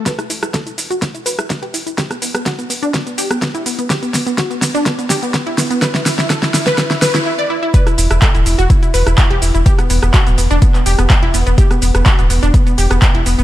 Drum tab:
HH |xxoxxxoxxxoxxxox|xxoxxxoxxxoxxxox|xxoxxxoxxxoxxxox|xxoxxxoxxxox----|
SH |xxxxxxxxxxxxx-xx|xxxxxxxxxxxxxxxx|xxxxxxxxxxxxx-xx|xxxxxxxxxxxx----|
CP |----------------|----------------|----------------|----------------|
SD |or-ro---o--ro---|or-ro---o--ro---|o-o-o-o-o-o-o-o-|oooooooooooo----|
BD |o---o---o---o---|o---o---o---o---|o---o---o---o---|o---o---o-------|

HH |xxoxxxoxxxoxxxox|xxoxxxoxxxoxxxox|xxoxxxoxxxoxxxox|
SH |xxxxxxxxxxxxx-xx|xxxxxxxxxxxxx-xx|xxxxxxxxxxxxx-xx|
CP |----x-------x---|----x----x--x---|----x-------x---|
SD |-r-r-------r----|-r-r-------r----|-r-r-------r----|
BD |o---o---o---o---|o---o---o---o---|o---o---o---o---|